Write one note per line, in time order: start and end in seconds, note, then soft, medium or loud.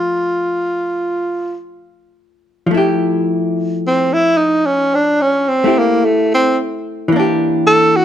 0.00 2.65 F3 soft
0.00 2.70 A3 soft
0.00 1.57 F4 medium
0.00 2.74 G4 soft
2.67 7.08 F3 soft
2.71 5.63 A3 soft
2.71 5.65 E4 soft
2.77 5.66 G4 soft
3.87 4.15 C4 medium
4.13 4.39 E4 medium
4.37 4.67 D#4 medium
4.66 4.96 C#4 medium
4.95 5.23 D4 medium
5.22 5.50 C#4 medium
5.49 5.80 C4 medium
5.64 7.11 A3 soft
5.64 7.12 E4 soft
5.64 7.13 G4 soft
5.79 6.07 A#3 medium
6.05 6.34 A3 medium
6.34 6.58 C4 medium
7.08 8.05 E3 soft
7.12 8.05 A#3 soft
7.12 8.05 D4 medium
7.20 8.05 G4 medium
7.67 7.98 A4 medium
7.96 8.05 F#4 medium